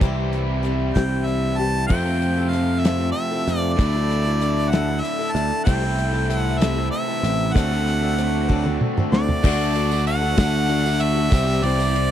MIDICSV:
0, 0, Header, 1, 6, 480
1, 0, Start_track
1, 0, Tempo, 628272
1, 12, Time_signature, 6, 3, 24, 8
1, 9253, End_track
2, 0, Start_track
2, 0, Title_t, "Harmonica"
2, 0, Program_c, 0, 22
2, 721, Note_on_c, 0, 79, 92
2, 961, Note_on_c, 0, 76, 79
2, 973, Note_off_c, 0, 79, 0
2, 1203, Note_on_c, 0, 81, 92
2, 1214, Note_off_c, 0, 76, 0
2, 1423, Note_off_c, 0, 81, 0
2, 1427, Note_on_c, 0, 79, 98
2, 1902, Note_on_c, 0, 77, 79
2, 1914, Note_off_c, 0, 79, 0
2, 2133, Note_on_c, 0, 76, 94
2, 2144, Note_off_c, 0, 77, 0
2, 2376, Note_off_c, 0, 76, 0
2, 2381, Note_on_c, 0, 76, 90
2, 2740, Note_off_c, 0, 76, 0
2, 2740, Note_on_c, 0, 74, 90
2, 2854, Note_off_c, 0, 74, 0
2, 2854, Note_on_c, 0, 74, 89
2, 3592, Note_on_c, 0, 78, 91
2, 3603, Note_off_c, 0, 74, 0
2, 3821, Note_on_c, 0, 76, 83
2, 3833, Note_off_c, 0, 78, 0
2, 4062, Note_on_c, 0, 81, 93
2, 4074, Note_off_c, 0, 76, 0
2, 4306, Note_off_c, 0, 81, 0
2, 4310, Note_on_c, 0, 79, 93
2, 4811, Note_on_c, 0, 78, 84
2, 4822, Note_off_c, 0, 79, 0
2, 5029, Note_on_c, 0, 76, 83
2, 5040, Note_off_c, 0, 78, 0
2, 5272, Note_off_c, 0, 76, 0
2, 5277, Note_on_c, 0, 76, 85
2, 5753, Note_on_c, 0, 78, 87
2, 5764, Note_off_c, 0, 76, 0
2, 6724, Note_off_c, 0, 78, 0
2, 6972, Note_on_c, 0, 74, 87
2, 7662, Note_off_c, 0, 74, 0
2, 7696, Note_on_c, 0, 78, 103
2, 8417, Note_on_c, 0, 76, 102
2, 8428, Note_off_c, 0, 78, 0
2, 8890, Note_on_c, 0, 74, 97
2, 8902, Note_off_c, 0, 76, 0
2, 9253, Note_off_c, 0, 74, 0
2, 9253, End_track
3, 0, Start_track
3, 0, Title_t, "Steel-string acoustic guitar"
3, 0, Program_c, 1, 25
3, 7, Note_on_c, 1, 48, 71
3, 12, Note_on_c, 1, 60, 78
3, 13, Note_on_c, 1, 55, 72
3, 17, Note_on_c, 1, 64, 79
3, 21, Note_on_c, 1, 67, 88
3, 470, Note_off_c, 1, 55, 0
3, 475, Note_off_c, 1, 60, 0
3, 478, Note_off_c, 1, 64, 0
3, 479, Note_on_c, 1, 55, 60
3, 484, Note_on_c, 1, 60, 63
3, 487, Note_off_c, 1, 67, 0
3, 488, Note_on_c, 1, 64, 62
3, 490, Note_off_c, 1, 48, 0
3, 496, Note_on_c, 1, 67, 56
3, 719, Note_off_c, 1, 67, 0
3, 721, Note_off_c, 1, 64, 0
3, 726, Note_off_c, 1, 55, 0
3, 726, Note_off_c, 1, 60, 0
3, 728, Note_on_c, 1, 67, 60
3, 730, Note_on_c, 1, 64, 52
3, 735, Note_on_c, 1, 48, 47
3, 735, Note_on_c, 1, 60, 63
3, 736, Note_on_c, 1, 55, 57
3, 1205, Note_off_c, 1, 67, 0
3, 1211, Note_off_c, 1, 64, 0
3, 1214, Note_off_c, 1, 48, 0
3, 1214, Note_off_c, 1, 55, 0
3, 1214, Note_off_c, 1, 60, 0
3, 1214, Note_on_c, 1, 67, 55
3, 1220, Note_on_c, 1, 64, 48
3, 1229, Note_on_c, 1, 60, 47
3, 1436, Note_off_c, 1, 60, 0
3, 1440, Note_off_c, 1, 64, 0
3, 1443, Note_on_c, 1, 53, 62
3, 1446, Note_on_c, 1, 60, 69
3, 1450, Note_on_c, 1, 64, 75
3, 1452, Note_off_c, 1, 67, 0
3, 1455, Note_on_c, 1, 69, 83
3, 1560, Note_off_c, 1, 69, 0
3, 1568, Note_off_c, 1, 53, 0
3, 1569, Note_off_c, 1, 60, 0
3, 1569, Note_on_c, 1, 69, 41
3, 1571, Note_off_c, 1, 64, 0
3, 1581, Note_on_c, 1, 60, 35
3, 1801, Note_off_c, 1, 69, 0
3, 1811, Note_on_c, 1, 69, 50
3, 1816, Note_on_c, 1, 64, 46
3, 1817, Note_off_c, 1, 60, 0
3, 1827, Note_on_c, 1, 60, 43
3, 1927, Note_on_c, 1, 53, 46
3, 1931, Note_off_c, 1, 60, 0
3, 1932, Note_off_c, 1, 69, 0
3, 1934, Note_off_c, 1, 64, 0
3, 1940, Note_on_c, 1, 60, 55
3, 1950, Note_on_c, 1, 69, 52
3, 2168, Note_off_c, 1, 53, 0
3, 2172, Note_off_c, 1, 60, 0
3, 2177, Note_on_c, 1, 53, 61
3, 2181, Note_on_c, 1, 60, 62
3, 2182, Note_off_c, 1, 69, 0
3, 2182, Note_on_c, 1, 64, 71
3, 2192, Note_on_c, 1, 69, 66
3, 2279, Note_off_c, 1, 69, 0
3, 2288, Note_on_c, 1, 69, 52
3, 2295, Note_off_c, 1, 53, 0
3, 2297, Note_off_c, 1, 60, 0
3, 2298, Note_off_c, 1, 64, 0
3, 2308, Note_on_c, 1, 60, 39
3, 2521, Note_off_c, 1, 69, 0
3, 2530, Note_on_c, 1, 69, 48
3, 2535, Note_off_c, 1, 60, 0
3, 2535, Note_on_c, 1, 64, 44
3, 2545, Note_on_c, 1, 60, 40
3, 2652, Note_off_c, 1, 69, 0
3, 2654, Note_off_c, 1, 60, 0
3, 2655, Note_off_c, 1, 64, 0
3, 2658, Note_on_c, 1, 53, 58
3, 2663, Note_on_c, 1, 60, 65
3, 2667, Note_on_c, 1, 69, 64
3, 2669, Note_on_c, 1, 64, 58
3, 2888, Note_off_c, 1, 53, 0
3, 2891, Note_on_c, 1, 57, 71
3, 2892, Note_off_c, 1, 64, 0
3, 2893, Note_on_c, 1, 50, 66
3, 2895, Note_off_c, 1, 60, 0
3, 2895, Note_off_c, 1, 69, 0
3, 2898, Note_on_c, 1, 62, 70
3, 2901, Note_on_c, 1, 64, 70
3, 2904, Note_on_c, 1, 69, 80
3, 3001, Note_off_c, 1, 69, 0
3, 3010, Note_on_c, 1, 69, 47
3, 3013, Note_off_c, 1, 50, 0
3, 3013, Note_off_c, 1, 57, 0
3, 3014, Note_off_c, 1, 64, 0
3, 3016, Note_off_c, 1, 62, 0
3, 3023, Note_on_c, 1, 64, 42
3, 3030, Note_on_c, 1, 62, 34
3, 3241, Note_off_c, 1, 69, 0
3, 3250, Note_on_c, 1, 69, 45
3, 3253, Note_off_c, 1, 64, 0
3, 3257, Note_off_c, 1, 62, 0
3, 3262, Note_on_c, 1, 64, 52
3, 3266, Note_on_c, 1, 62, 43
3, 3368, Note_off_c, 1, 62, 0
3, 3372, Note_off_c, 1, 69, 0
3, 3373, Note_on_c, 1, 57, 52
3, 3375, Note_off_c, 1, 64, 0
3, 3377, Note_on_c, 1, 62, 54
3, 3384, Note_on_c, 1, 64, 60
3, 3388, Note_on_c, 1, 69, 64
3, 3598, Note_off_c, 1, 57, 0
3, 3603, Note_off_c, 1, 62, 0
3, 3603, Note_on_c, 1, 50, 65
3, 3606, Note_off_c, 1, 64, 0
3, 3607, Note_on_c, 1, 57, 65
3, 3608, Note_off_c, 1, 69, 0
3, 3612, Note_on_c, 1, 62, 65
3, 3615, Note_on_c, 1, 64, 64
3, 3617, Note_on_c, 1, 69, 75
3, 3719, Note_off_c, 1, 69, 0
3, 3723, Note_off_c, 1, 64, 0
3, 3728, Note_on_c, 1, 69, 46
3, 3729, Note_off_c, 1, 50, 0
3, 3731, Note_off_c, 1, 57, 0
3, 3732, Note_on_c, 1, 64, 43
3, 3733, Note_off_c, 1, 62, 0
3, 3745, Note_on_c, 1, 62, 43
3, 3954, Note_off_c, 1, 69, 0
3, 3963, Note_on_c, 1, 69, 50
3, 3965, Note_off_c, 1, 64, 0
3, 3970, Note_off_c, 1, 62, 0
3, 3974, Note_on_c, 1, 64, 48
3, 3979, Note_on_c, 1, 62, 46
3, 4083, Note_off_c, 1, 62, 0
3, 4085, Note_on_c, 1, 57, 63
3, 4089, Note_off_c, 1, 69, 0
3, 4091, Note_off_c, 1, 64, 0
3, 4093, Note_on_c, 1, 62, 59
3, 4100, Note_on_c, 1, 64, 68
3, 4101, Note_on_c, 1, 69, 60
3, 4312, Note_off_c, 1, 57, 0
3, 4317, Note_off_c, 1, 64, 0
3, 4317, Note_on_c, 1, 48, 69
3, 4321, Note_off_c, 1, 69, 0
3, 4321, Note_on_c, 1, 57, 74
3, 4323, Note_off_c, 1, 62, 0
3, 4326, Note_on_c, 1, 60, 82
3, 4326, Note_on_c, 1, 64, 74
3, 4331, Note_on_c, 1, 69, 84
3, 4434, Note_off_c, 1, 69, 0
3, 4440, Note_off_c, 1, 64, 0
3, 4444, Note_off_c, 1, 60, 0
3, 4444, Note_on_c, 1, 69, 53
3, 4446, Note_off_c, 1, 48, 0
3, 4448, Note_off_c, 1, 57, 0
3, 4450, Note_on_c, 1, 64, 44
3, 4453, Note_on_c, 1, 60, 39
3, 4670, Note_off_c, 1, 69, 0
3, 4675, Note_off_c, 1, 64, 0
3, 4679, Note_on_c, 1, 69, 54
3, 4683, Note_off_c, 1, 60, 0
3, 4684, Note_on_c, 1, 64, 46
3, 4692, Note_on_c, 1, 60, 46
3, 4798, Note_off_c, 1, 60, 0
3, 4803, Note_off_c, 1, 64, 0
3, 4803, Note_on_c, 1, 57, 51
3, 4807, Note_off_c, 1, 69, 0
3, 4807, Note_on_c, 1, 60, 55
3, 4812, Note_on_c, 1, 64, 59
3, 4817, Note_on_c, 1, 69, 60
3, 5039, Note_off_c, 1, 57, 0
3, 5039, Note_off_c, 1, 64, 0
3, 5041, Note_off_c, 1, 60, 0
3, 5046, Note_off_c, 1, 69, 0
3, 5048, Note_on_c, 1, 48, 69
3, 5048, Note_on_c, 1, 57, 65
3, 5049, Note_on_c, 1, 64, 64
3, 5050, Note_on_c, 1, 60, 77
3, 5055, Note_on_c, 1, 69, 75
3, 5159, Note_off_c, 1, 69, 0
3, 5163, Note_off_c, 1, 64, 0
3, 5168, Note_on_c, 1, 69, 52
3, 5172, Note_off_c, 1, 48, 0
3, 5172, Note_off_c, 1, 57, 0
3, 5173, Note_off_c, 1, 60, 0
3, 5173, Note_on_c, 1, 64, 44
3, 5183, Note_on_c, 1, 60, 38
3, 5396, Note_off_c, 1, 69, 0
3, 5405, Note_on_c, 1, 69, 45
3, 5407, Note_off_c, 1, 64, 0
3, 5414, Note_off_c, 1, 60, 0
3, 5416, Note_on_c, 1, 64, 43
3, 5424, Note_on_c, 1, 60, 39
3, 5526, Note_off_c, 1, 60, 0
3, 5530, Note_off_c, 1, 69, 0
3, 5531, Note_on_c, 1, 57, 68
3, 5533, Note_off_c, 1, 64, 0
3, 5535, Note_on_c, 1, 60, 67
3, 5543, Note_on_c, 1, 64, 64
3, 5544, Note_on_c, 1, 69, 62
3, 5762, Note_on_c, 1, 50, 82
3, 5765, Note_off_c, 1, 60, 0
3, 5765, Note_off_c, 1, 69, 0
3, 5767, Note_off_c, 1, 57, 0
3, 5768, Note_off_c, 1, 64, 0
3, 5770, Note_on_c, 1, 54, 68
3, 5771, Note_on_c, 1, 62, 76
3, 5774, Note_on_c, 1, 60, 71
3, 5775, Note_on_c, 1, 69, 86
3, 5880, Note_off_c, 1, 69, 0
3, 5886, Note_off_c, 1, 62, 0
3, 5889, Note_off_c, 1, 50, 0
3, 5889, Note_on_c, 1, 69, 51
3, 5891, Note_off_c, 1, 60, 0
3, 5893, Note_off_c, 1, 54, 0
3, 5895, Note_on_c, 1, 62, 42
3, 5900, Note_on_c, 1, 60, 41
3, 6121, Note_off_c, 1, 69, 0
3, 6129, Note_off_c, 1, 62, 0
3, 6130, Note_on_c, 1, 69, 55
3, 6136, Note_off_c, 1, 60, 0
3, 6139, Note_on_c, 1, 62, 50
3, 6145, Note_on_c, 1, 60, 40
3, 6239, Note_off_c, 1, 60, 0
3, 6239, Note_off_c, 1, 62, 0
3, 6241, Note_on_c, 1, 54, 51
3, 6247, Note_off_c, 1, 69, 0
3, 6248, Note_on_c, 1, 60, 55
3, 6248, Note_on_c, 1, 62, 58
3, 6256, Note_on_c, 1, 69, 59
3, 6476, Note_off_c, 1, 54, 0
3, 6478, Note_off_c, 1, 60, 0
3, 6478, Note_off_c, 1, 62, 0
3, 6481, Note_on_c, 1, 50, 76
3, 6485, Note_off_c, 1, 69, 0
3, 6485, Note_on_c, 1, 54, 72
3, 6487, Note_on_c, 1, 60, 82
3, 6487, Note_on_c, 1, 62, 86
3, 6495, Note_on_c, 1, 69, 86
3, 6590, Note_off_c, 1, 69, 0
3, 6599, Note_on_c, 1, 69, 55
3, 6606, Note_off_c, 1, 62, 0
3, 6607, Note_off_c, 1, 60, 0
3, 6608, Note_off_c, 1, 50, 0
3, 6610, Note_off_c, 1, 54, 0
3, 6615, Note_on_c, 1, 62, 53
3, 6616, Note_on_c, 1, 60, 49
3, 6845, Note_off_c, 1, 69, 0
3, 6854, Note_on_c, 1, 69, 50
3, 6855, Note_off_c, 1, 62, 0
3, 6856, Note_off_c, 1, 60, 0
3, 6865, Note_on_c, 1, 62, 49
3, 6868, Note_on_c, 1, 60, 53
3, 6964, Note_off_c, 1, 62, 0
3, 6967, Note_off_c, 1, 60, 0
3, 6968, Note_on_c, 1, 54, 67
3, 6971, Note_off_c, 1, 69, 0
3, 6974, Note_on_c, 1, 62, 76
3, 6976, Note_on_c, 1, 60, 66
3, 6980, Note_on_c, 1, 69, 76
3, 7202, Note_off_c, 1, 62, 0
3, 7208, Note_off_c, 1, 60, 0
3, 7208, Note_on_c, 1, 50, 67
3, 7209, Note_off_c, 1, 54, 0
3, 7211, Note_off_c, 1, 69, 0
3, 7211, Note_on_c, 1, 62, 86
3, 7212, Note_on_c, 1, 57, 78
3, 7219, Note_on_c, 1, 66, 85
3, 7220, Note_on_c, 1, 69, 82
3, 7434, Note_off_c, 1, 57, 0
3, 7441, Note_off_c, 1, 62, 0
3, 7443, Note_on_c, 1, 57, 60
3, 7448, Note_off_c, 1, 66, 0
3, 7450, Note_off_c, 1, 69, 0
3, 7450, Note_on_c, 1, 62, 63
3, 7451, Note_off_c, 1, 50, 0
3, 7458, Note_on_c, 1, 66, 64
3, 7459, Note_on_c, 1, 69, 68
3, 7562, Note_off_c, 1, 69, 0
3, 7569, Note_off_c, 1, 57, 0
3, 7571, Note_on_c, 1, 69, 61
3, 7572, Note_off_c, 1, 62, 0
3, 7572, Note_off_c, 1, 66, 0
3, 7581, Note_on_c, 1, 66, 55
3, 7586, Note_on_c, 1, 62, 43
3, 7792, Note_off_c, 1, 69, 0
3, 7801, Note_on_c, 1, 69, 56
3, 7803, Note_off_c, 1, 66, 0
3, 7807, Note_off_c, 1, 62, 0
3, 7812, Note_on_c, 1, 66, 50
3, 7816, Note_on_c, 1, 62, 50
3, 7913, Note_off_c, 1, 62, 0
3, 7915, Note_on_c, 1, 50, 66
3, 7916, Note_off_c, 1, 66, 0
3, 7917, Note_off_c, 1, 69, 0
3, 7920, Note_on_c, 1, 57, 72
3, 7922, Note_on_c, 1, 62, 74
3, 7925, Note_on_c, 1, 66, 74
3, 7926, Note_on_c, 1, 69, 82
3, 8152, Note_off_c, 1, 57, 0
3, 8156, Note_off_c, 1, 62, 0
3, 8157, Note_off_c, 1, 66, 0
3, 8161, Note_on_c, 1, 57, 60
3, 8164, Note_off_c, 1, 50, 0
3, 8165, Note_on_c, 1, 62, 62
3, 8166, Note_on_c, 1, 66, 65
3, 8167, Note_off_c, 1, 69, 0
3, 8176, Note_on_c, 1, 69, 65
3, 8278, Note_off_c, 1, 69, 0
3, 8287, Note_off_c, 1, 57, 0
3, 8287, Note_off_c, 1, 66, 0
3, 8287, Note_on_c, 1, 69, 52
3, 8289, Note_off_c, 1, 62, 0
3, 8296, Note_on_c, 1, 66, 47
3, 8302, Note_on_c, 1, 62, 43
3, 8508, Note_off_c, 1, 69, 0
3, 8517, Note_on_c, 1, 69, 55
3, 8521, Note_off_c, 1, 66, 0
3, 8528, Note_off_c, 1, 62, 0
3, 8530, Note_on_c, 1, 66, 54
3, 8537, Note_on_c, 1, 62, 50
3, 8644, Note_off_c, 1, 69, 0
3, 8644, Note_on_c, 1, 48, 75
3, 8647, Note_on_c, 1, 55, 83
3, 8648, Note_off_c, 1, 62, 0
3, 8650, Note_off_c, 1, 66, 0
3, 8651, Note_on_c, 1, 60, 79
3, 8653, Note_on_c, 1, 64, 97
3, 8657, Note_on_c, 1, 72, 84
3, 8883, Note_off_c, 1, 55, 0
3, 8887, Note_off_c, 1, 48, 0
3, 8888, Note_off_c, 1, 60, 0
3, 8892, Note_off_c, 1, 64, 0
3, 8892, Note_on_c, 1, 55, 59
3, 8894, Note_off_c, 1, 72, 0
3, 8897, Note_on_c, 1, 60, 55
3, 8900, Note_on_c, 1, 64, 69
3, 8907, Note_on_c, 1, 72, 70
3, 8994, Note_off_c, 1, 72, 0
3, 9004, Note_on_c, 1, 72, 63
3, 9008, Note_off_c, 1, 64, 0
3, 9011, Note_off_c, 1, 55, 0
3, 9014, Note_off_c, 1, 60, 0
3, 9017, Note_on_c, 1, 64, 56
3, 9026, Note_on_c, 1, 60, 43
3, 9238, Note_off_c, 1, 72, 0
3, 9249, Note_off_c, 1, 64, 0
3, 9253, Note_off_c, 1, 60, 0
3, 9253, End_track
4, 0, Start_track
4, 0, Title_t, "Overdriven electric guitar"
4, 0, Program_c, 2, 29
4, 5, Note_on_c, 2, 52, 89
4, 1434, Note_off_c, 2, 52, 0
4, 1442, Note_on_c, 2, 41, 74
4, 1449, Note_on_c, 2, 48, 77
4, 1457, Note_on_c, 2, 57, 76
4, 1469, Note_on_c, 2, 65, 86
4, 2874, Note_off_c, 2, 41, 0
4, 2878, Note_off_c, 2, 48, 0
4, 2887, Note_off_c, 2, 57, 0
4, 2888, Note_off_c, 2, 65, 0
4, 4331, Note_on_c, 2, 52, 74
4, 5759, Note_off_c, 2, 52, 0
4, 5773, Note_on_c, 2, 57, 93
4, 5785, Note_on_c, 2, 66, 99
4, 7199, Note_off_c, 2, 57, 0
4, 7205, Note_off_c, 2, 66, 0
4, 7951, Note_on_c, 2, 50, 66
4, 8156, Note_off_c, 2, 50, 0
4, 8165, Note_on_c, 2, 50, 83
4, 8408, Note_on_c, 2, 66, 66
4, 8418, Note_on_c, 2, 62, 65
4, 8426, Note_on_c, 2, 57, 55
4, 8634, Note_off_c, 2, 50, 0
4, 8635, Note_off_c, 2, 66, 0
4, 8641, Note_off_c, 2, 62, 0
4, 8645, Note_off_c, 2, 57, 0
4, 8645, Note_on_c, 2, 52, 88
4, 8659, Note_on_c, 2, 67, 96
4, 8869, Note_off_c, 2, 67, 0
4, 8878, Note_on_c, 2, 67, 67
4, 9127, Note_off_c, 2, 52, 0
4, 9253, Note_off_c, 2, 67, 0
4, 9253, End_track
5, 0, Start_track
5, 0, Title_t, "Picked electric bass"
5, 0, Program_c, 3, 34
5, 8, Note_on_c, 3, 36, 93
5, 700, Note_off_c, 3, 36, 0
5, 733, Note_on_c, 3, 36, 78
5, 1422, Note_off_c, 3, 36, 0
5, 1448, Note_on_c, 3, 41, 86
5, 2380, Note_off_c, 3, 41, 0
5, 2656, Note_on_c, 3, 41, 85
5, 2882, Note_off_c, 3, 41, 0
5, 2891, Note_on_c, 3, 38, 77
5, 3823, Note_off_c, 3, 38, 0
5, 4086, Note_on_c, 3, 38, 98
5, 4204, Note_off_c, 3, 38, 0
5, 4334, Note_on_c, 3, 36, 89
5, 5265, Note_off_c, 3, 36, 0
5, 5527, Note_on_c, 3, 33, 86
5, 5758, Note_off_c, 3, 33, 0
5, 5769, Note_on_c, 3, 38, 91
5, 6701, Note_off_c, 3, 38, 0
5, 6971, Note_on_c, 3, 38, 94
5, 7086, Note_off_c, 3, 38, 0
5, 7212, Note_on_c, 3, 38, 100
5, 7902, Note_off_c, 3, 38, 0
5, 7926, Note_on_c, 3, 38, 90
5, 8618, Note_off_c, 3, 38, 0
5, 8650, Note_on_c, 3, 36, 92
5, 8877, Note_off_c, 3, 36, 0
5, 8882, Note_on_c, 3, 36, 80
5, 9253, Note_off_c, 3, 36, 0
5, 9253, End_track
6, 0, Start_track
6, 0, Title_t, "Drums"
6, 10, Note_on_c, 9, 36, 108
6, 10, Note_on_c, 9, 42, 79
6, 86, Note_off_c, 9, 42, 0
6, 87, Note_off_c, 9, 36, 0
6, 250, Note_on_c, 9, 42, 56
6, 327, Note_off_c, 9, 42, 0
6, 491, Note_on_c, 9, 42, 50
6, 568, Note_off_c, 9, 42, 0
6, 733, Note_on_c, 9, 36, 70
6, 734, Note_on_c, 9, 42, 71
6, 740, Note_on_c, 9, 38, 103
6, 809, Note_off_c, 9, 36, 0
6, 811, Note_off_c, 9, 42, 0
6, 816, Note_off_c, 9, 38, 0
6, 974, Note_on_c, 9, 42, 51
6, 1050, Note_off_c, 9, 42, 0
6, 1209, Note_on_c, 9, 42, 50
6, 1285, Note_off_c, 9, 42, 0
6, 1452, Note_on_c, 9, 49, 105
6, 1454, Note_on_c, 9, 36, 103
6, 1528, Note_off_c, 9, 49, 0
6, 1530, Note_off_c, 9, 36, 0
6, 1696, Note_on_c, 9, 42, 62
6, 1772, Note_off_c, 9, 42, 0
6, 1935, Note_on_c, 9, 42, 65
6, 2011, Note_off_c, 9, 42, 0
6, 2175, Note_on_c, 9, 42, 88
6, 2181, Note_on_c, 9, 38, 105
6, 2252, Note_off_c, 9, 42, 0
6, 2257, Note_off_c, 9, 38, 0
6, 2413, Note_on_c, 9, 42, 55
6, 2490, Note_off_c, 9, 42, 0
6, 2654, Note_on_c, 9, 42, 58
6, 2730, Note_off_c, 9, 42, 0
6, 2894, Note_on_c, 9, 36, 103
6, 2897, Note_on_c, 9, 42, 80
6, 2971, Note_off_c, 9, 36, 0
6, 2974, Note_off_c, 9, 42, 0
6, 3139, Note_on_c, 9, 42, 62
6, 3216, Note_off_c, 9, 42, 0
6, 3372, Note_on_c, 9, 42, 60
6, 3449, Note_off_c, 9, 42, 0
6, 3613, Note_on_c, 9, 42, 86
6, 3618, Note_on_c, 9, 38, 104
6, 3689, Note_off_c, 9, 42, 0
6, 3694, Note_off_c, 9, 38, 0
6, 3855, Note_on_c, 9, 42, 62
6, 3931, Note_off_c, 9, 42, 0
6, 4094, Note_on_c, 9, 42, 62
6, 4170, Note_off_c, 9, 42, 0
6, 4329, Note_on_c, 9, 42, 90
6, 4332, Note_on_c, 9, 36, 106
6, 4406, Note_off_c, 9, 42, 0
6, 4409, Note_off_c, 9, 36, 0
6, 4573, Note_on_c, 9, 42, 67
6, 4649, Note_off_c, 9, 42, 0
6, 4814, Note_on_c, 9, 42, 65
6, 4891, Note_off_c, 9, 42, 0
6, 5055, Note_on_c, 9, 42, 95
6, 5060, Note_on_c, 9, 38, 112
6, 5131, Note_off_c, 9, 42, 0
6, 5136, Note_off_c, 9, 38, 0
6, 5297, Note_on_c, 9, 42, 65
6, 5373, Note_off_c, 9, 42, 0
6, 5533, Note_on_c, 9, 42, 72
6, 5610, Note_off_c, 9, 42, 0
6, 5774, Note_on_c, 9, 36, 114
6, 5777, Note_on_c, 9, 42, 100
6, 5850, Note_off_c, 9, 36, 0
6, 5853, Note_off_c, 9, 42, 0
6, 6015, Note_on_c, 9, 42, 74
6, 6091, Note_off_c, 9, 42, 0
6, 6253, Note_on_c, 9, 42, 68
6, 6329, Note_off_c, 9, 42, 0
6, 6492, Note_on_c, 9, 36, 60
6, 6568, Note_off_c, 9, 36, 0
6, 6614, Note_on_c, 9, 48, 53
6, 6690, Note_off_c, 9, 48, 0
6, 6731, Note_on_c, 9, 47, 67
6, 6807, Note_off_c, 9, 47, 0
6, 6858, Note_on_c, 9, 45, 76
6, 6935, Note_off_c, 9, 45, 0
6, 6977, Note_on_c, 9, 38, 86
6, 7054, Note_off_c, 9, 38, 0
6, 7095, Note_on_c, 9, 43, 83
6, 7172, Note_off_c, 9, 43, 0
6, 7210, Note_on_c, 9, 54, 78
6, 7213, Note_on_c, 9, 36, 107
6, 7216, Note_on_c, 9, 49, 125
6, 7287, Note_off_c, 9, 54, 0
6, 7289, Note_off_c, 9, 36, 0
6, 7293, Note_off_c, 9, 49, 0
6, 7453, Note_on_c, 9, 51, 76
6, 7529, Note_off_c, 9, 51, 0
6, 7575, Note_on_c, 9, 54, 69
6, 7651, Note_off_c, 9, 54, 0
6, 7691, Note_on_c, 9, 51, 72
6, 7767, Note_off_c, 9, 51, 0
6, 7927, Note_on_c, 9, 51, 96
6, 7929, Note_on_c, 9, 36, 84
6, 7933, Note_on_c, 9, 38, 112
6, 7935, Note_on_c, 9, 54, 92
6, 8004, Note_off_c, 9, 51, 0
6, 8006, Note_off_c, 9, 36, 0
6, 8009, Note_off_c, 9, 38, 0
6, 8012, Note_off_c, 9, 54, 0
6, 8165, Note_on_c, 9, 51, 73
6, 8241, Note_off_c, 9, 51, 0
6, 8295, Note_on_c, 9, 54, 78
6, 8372, Note_off_c, 9, 54, 0
6, 8407, Note_on_c, 9, 51, 71
6, 8484, Note_off_c, 9, 51, 0
6, 8647, Note_on_c, 9, 51, 101
6, 8649, Note_on_c, 9, 36, 123
6, 8652, Note_on_c, 9, 54, 93
6, 8723, Note_off_c, 9, 51, 0
6, 8725, Note_off_c, 9, 36, 0
6, 8729, Note_off_c, 9, 54, 0
6, 8888, Note_on_c, 9, 51, 80
6, 8964, Note_off_c, 9, 51, 0
6, 9014, Note_on_c, 9, 54, 71
6, 9091, Note_off_c, 9, 54, 0
6, 9136, Note_on_c, 9, 51, 85
6, 9212, Note_off_c, 9, 51, 0
6, 9253, End_track
0, 0, End_of_file